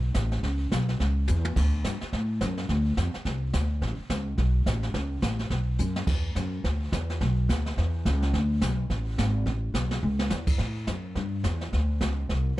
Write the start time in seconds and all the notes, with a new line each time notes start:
Already playing: B1
0.14 A1, kick, snare, hi-hat pedal
0.32 snare
0.43 C#2, brush sweep, kick, snare
0.72 B1, kick, snare, hi-hat pedal
0.89 snare
1.00 C#2, brush sweep, kick, snare
1.28 E2, hi-hat pedal, high tom
1.45 high tom
1.56 D2, brush sweep, kick, snare, crash
1.84 G2, kick, snare, hi-hat pedal
2.01 muted upright bass stroke, snare
2.13 A2, brush sweep, kick, snare
2.41 F#2, kick, snare, hi-hat pedal
2.58 snare
2.69 D2, brush sweep, kick, snare
2.97 F2, kick, snare, hi-hat pedal
3.14 muted upright bass stroke, snare
3.25 C2, brush sweep, kick, snare
3.53 D2, kick, snare, hi-hat pedal
3.82 A1, brush sweep, kick, snare
3.98 muted upright bass stroke
4.10 C#2, kick, snare, hi-hat pedal
4.38 B1, brush sweep, kick, snare
4.66 A1, kick, snare, hi-hat pedal
4.83 snare
4.94 C#2, brush sweep, kick, snare
5.22 A1, kick, snare, hi-hat pedal
5.39 snare
5.50 B1, brush sweep, kick, snare
5.78 F#2, hi-hat pedal
5.96 snare
6.07 E2, brush sweep, kick, snare, crash
6.35 F#2, kick, snare, hi-hat pedal
6.64 D2, brush sweep, kick, snare
6.92 E2, kick, snare, hi-hat pedal
7.10 snare
7.21 B1, brush sweep, kick, snare
7.49 D2, kick, snare, hi-hat pedal
7.66 snare
7.77 E2, brush sweep, kick, snare
8.05 C#2, kick, snare, hi-hat pedal
8.22 snare
8.34 D2, brush sweep, kick, snare
8.62 B1, kick, snare, hi-hat pedal
8.90 A1, brush sweep, kick, snare
9.18 G#1, kick, snare, hi-hat pedal
9.46 A1, brush sweep, kick, snare
9.74 B1, kick, snare, hi-hat pedal
9.91 snare
10.03 C#2
10.19 snare
10.30 E2, snare, hi-hat pedal
10.47 kick, crash
10.58 A2, brush sweep, kick, snare
10.87 F#2, kick, snare, hi-hat pedal
11.15 G2, brush sweep, kick, snare
11.44 E2, kick, snare, hi-hat pedal
11.61 snare
11.72 D2, brush sweep, kick, snare
12.01 C#2, kick, snare, hi-hat pedal
12.29 C2, brush sweep, kick, snare